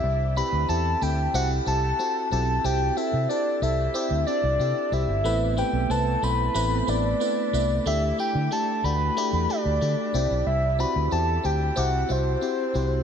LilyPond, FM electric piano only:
\new Staff \with { instrumentName = "FM electric piano" } { \time 4/4 \key c \lydian \tempo 4 = 92 <c' e' g'>8 <c' e' g'>8 <c' e' g'>8 <c' e' a'>8 <c' e' g'>8 <c' e' g'>8 <c' e' fis'>8 <c' e' g'>8 | <c' e' g'>8 <c' e' a'>8 <c' e' a'>8 <c' e' a'>8 <c' e' g'>8 <c' e' g'>8 <c' e' g'>8 <c' e' g'>8 | <a b c' e' b'>8 <a b c' e' b'>8 <a b c' e' b'>8 <a b c' e' c''>8 <a b c' e' b'>8 <a b c' e' b'>8 <a b c' e' b'>8 <a b c' e' b'>8 | <a d' g'>8 <a d' e'>8 <a d' g'>8 <a d' fis'>8 <a d' g'>8 <a d' g'>8 <a d' g'>8 <c' e' g'>8~ |
<c' e' g'>8 <c' e' fis'>8 <c' e' g'>8 <c' e' g'>8 <c' e' g'>8 <c' e' fis'>8 <c' e' g'>8 <c' e' g'>8 | }